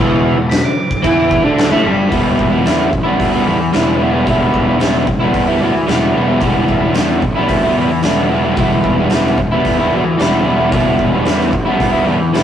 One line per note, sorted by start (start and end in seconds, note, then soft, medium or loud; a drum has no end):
0.00 0.35 E1 loud
0.00 0.36 E2 loud
0.00 0.37 E3 loud
0.00 0.20 E5 loud
0.37 0.63 E1 medium
0.37 0.59 E2 medium
0.50 0.65 B5 loud
0.50 snare loud
0.50 crash medium
0.65 1.69 D6 loud
0.91 kick medium
1.02 1.42 E2 medium
1.02 1.43 E3 loud
1.02 1.44 E4 loud
1.02 kick loud
1.02 crash medium
1.31 kick medium
1.44 1.70 D2 loud
1.44 1.70 D3 medium
1.44 1.71 D4 loud
1.58 snare loud
1.58 crash medium
1.70 1.84 A1 loud
1.70 1.83 A2 loud
1.70 1.84 A3 loud
1.70 1.84 B5 loud
1.83 2.10 G1 loud
1.83 2.10 G2 medium
1.83 2.08 G3 loud
1.83 2.11 B5 loud
2.08 2.63 E3 medium
2.08 2.54 G3 loud
2.08 2.53 B3 loud
2.08 2.50 E4 loud
2.08 kick loud
2.12 2.37 E1 medium
2.12 open hi-hat medium
2.39 2.64 E1 medium
2.39 kick medium
2.50 2.64 G3 medium
2.50 2.65 B3 medium
2.50 2.66 E4 medium
2.63 2.91 E2 medium
2.63 2.90 E3 medium
2.63 2.90 G3 medium
2.63 2.91 B3 medium
2.63 2.91 E4 loud
2.63 open hi-hat medium
2.67 snare loud
2.90 3.18 A1 medium
2.90 muted overdriven electric guitar stroke soft
2.90 kick medium
3.04 3.36 G3 medium
3.04 3.34 B3 medium
3.04 3.32 E4 medium
3.20 3.45 D2 medium
3.20 kick medium
3.20 open hi-hat medium
3.32 3.47 B3 medium
3.32 3.49 E4 medium
3.36 3.47 G3 medium
3.45 3.72 E2 medium
3.45 3.72 E3 medium
3.45 3.60 G3 medium
3.45 3.60 B3 medium
3.45 3.60 E4 medium
3.60 muted overdriven electric guitar stroke soft
3.73 4.24 E1 medium
3.73 3.99 E3 medium
3.73 4.01 G3 medium
3.73 4.02 B3 medium
3.73 4.03 E4 loud
3.73 snare loud
3.73 open hi-hat medium
3.99 4.26 E3 medium
3.99 4.15 G3 medium
3.99 4.14 B3 medium
3.99 4.12 E4 medium
4.12 4.27 G3 medium
4.12 4.28 B3 medium
4.12 4.29 E4 medium
4.27 4.78 E1 medium
4.27 4.78 E3 medium
4.27 4.70 G3 loud
4.27 4.69 B3 loud
4.27 4.66 E4 loud
4.27 kick loud
4.27 open hi-hat medium
4.54 kick medium
4.67 4.79 G3 medium
4.67 4.81 B3 medium
4.67 4.82 E4 medium
4.79 5.06 E1 medium
4.79 5.07 E3 medium
4.79 5.08 G3 medium
4.79 5.08 B3 medium
4.79 5.08 E4 loud
4.79 snare loud
4.79 open hi-hat medium
4.95 snare soft
5.07 5.32 E1 medium
5.07 muted overdriven electric guitar stroke soft
5.07 kick medium
5.21 5.50 G3 medium
5.21 5.49 B3 medium
5.21 5.47 E4 medium
5.34 5.60 E2 medium
5.34 kick medium
5.34 open hi-hat medium
5.48 5.61 G3 medium
5.48 5.63 B3 medium
5.48 5.64 E4 medium
5.60 5.87 D2 medium
5.60 5.86 E3 medium
5.60 5.75 G3 medium
5.60 5.76 B3 medium
5.60 5.75 E4 medium
5.76 muted overdriven electric guitar stroke soft
5.86 6.14 E1 medium
5.86 6.14 E3 medium
5.86 6.14 G3 medium
5.86 6.16 B3 loud
5.86 6.17 E4 loud
5.86 snare loud
5.86 open hi-hat soft
6.14 6.41 E1 medium
6.14 6.41 E3 medium
6.14 6.31 G3 medium
6.14 6.29 B3 medium
6.14 6.27 E4 medium
6.27 6.43 B3 medium
6.27 6.45 E4 medium
6.31 6.42 G3 medium
6.41 6.67 E1 medium
6.41 6.95 E3 loud
6.41 6.85 G3 loud
6.41 6.83 B3 loud
6.41 kick loud
6.41 open hi-hat medium
6.45 6.81 E4 loud
6.69 6.94 E1 medium
6.69 kick medium
6.81 6.96 G3 medium
6.81 6.97 B3 medium
6.81 6.99 E4 medium
6.94 7.21 E2 medium
6.94 7.23 E3 medium
6.94 7.23 G3 loud
6.94 7.24 B3 medium
6.94 snare loud
6.94 open hi-hat medium
6.99 7.24 E4 loud
7.22 7.48 A1 medium
7.22 muted overdriven electric guitar stroke soft
7.22 kick medium
7.36 7.67 G3 medium
7.36 7.64 B3 medium
7.36 7.63 E4 medium
7.49 7.75 D2 medium
7.49 kick medium
7.49 open hi-hat medium
7.63 7.79 B3 medium
7.63 7.79 E4 medium
7.67 7.77 G3 medium
7.76 8.02 E2 medium
7.76 8.02 E3 medium
7.76 7.92 G3 medium
7.76 7.91 B3 medium
7.76 7.90 E4 medium
7.91 muted overdriven electric guitar stroke soft
8.03 8.54 E1 medium
8.03 8.28 E3 medium
8.03 8.30 G3 medium
8.03 8.31 B3 loud
8.03 8.32 E4 loud
8.03 snare loud
8.03 open hi-hat medium
8.29 8.55 E3 medium
8.29 8.47 G3 medium
8.29 8.45 B3 medium
8.29 8.44 E4 medium
8.44 8.56 G3 medium
8.44 8.58 B3 medium
8.44 8.59 E4 medium
8.56 9.08 E1 medium
8.56 9.10 E3 medium
8.56 9.01 G3 loud
8.56 8.99 B3 loud
8.56 8.96 E4 loud
8.56 kick loud
8.56 open hi-hat medium
8.84 kick medium
8.97 9.13 B3 medium
8.97 9.14 E4 medium
9.01 9.12 G3 medium
9.10 9.37 E1 medium
9.10 9.39 E3 medium
9.10 9.39 G3 loud
9.10 9.39 B3 medium
9.10 snare loud
9.10 open hi-hat medium
9.14 9.39 E4 medium
9.27 snare soft
9.38 9.63 E1 medium
9.38 muted overdriven electric guitar stroke soft
9.38 kick medium
9.51 9.83 G3 medium
9.51 9.80 B3 medium
9.51 9.78 E4 medium
9.65 9.90 E2 medium
9.65 kick medium
9.65 open hi-hat medium
9.78 9.94 B3 medium
9.78 9.95 E4 medium
9.83 9.93 G3 medium
9.92 10.17 D2 medium
9.92 10.17 E3 medium
9.92 10.05 G3 medium
9.92 10.05 B3 medium
9.92 10.04 E4 medium
10.04 muted overdriven electric guitar stroke soft
10.17 10.44 E1 medium
10.17 10.43 E3 medium
10.17 10.45 G3 medium
10.17 10.46 B3 medium
10.17 snare loud
10.17 open hi-hat soft
10.21 10.47 E4 loud
10.43 10.71 E1 medium
10.43 10.70 E3 medium
10.43 10.60 G3 medium
10.43 10.59 B3 medium
10.48 10.57 E4 medium
10.57 10.71 G3 medium
10.57 10.72 B3 medium
10.57 10.74 E4 medium
10.70 10.97 E1 medium
10.70 11.26 E3 medium
10.70 11.15 G3 medium
10.70 11.14 B3 medium
10.70 11.11 E4 loud
10.70 kick loud
10.70 open hi-hat medium
10.99 11.25 E1 medium
10.99 kick medium
11.12 11.27 G3 medium
11.12 11.29 B3 medium
11.12 11.30 E4 medium
11.26 11.51 E2 medium
11.26 11.53 E3 medium
11.26 11.54 G3 medium
11.26 11.53 B3 medium
11.26 snare loud
11.26 open hi-hat medium
11.30 11.54 E4 medium
11.41 snare soft
11.53 11.78 A1 medium
11.53 muted overdriven electric guitar stroke soft
11.53 kick medium
11.66 11.96 G3 medium
11.66 11.94 B3 medium
11.66 11.92 E4 medium
11.80 12.05 D2 medium
11.80 kick medium
11.80 open hi-hat medium
11.92 12.07 B3 medium
11.92 12.09 E4 medium
11.97 12.06 G3 medium
12.05 12.32 E2 medium
12.05 12.33 E3 medium
12.05 12.21 G3 medium
12.05 12.20 B3 medium
12.05 12.19 E4 medium
12.20 muted overdriven electric guitar stroke soft
12.33 12.43 E1 medium
12.33 12.43 E3 medium
12.33 12.43 G3 medium
12.33 12.43 B3 medium
12.33 12.43 E4 medium
12.33 snare loud
12.33 open hi-hat medium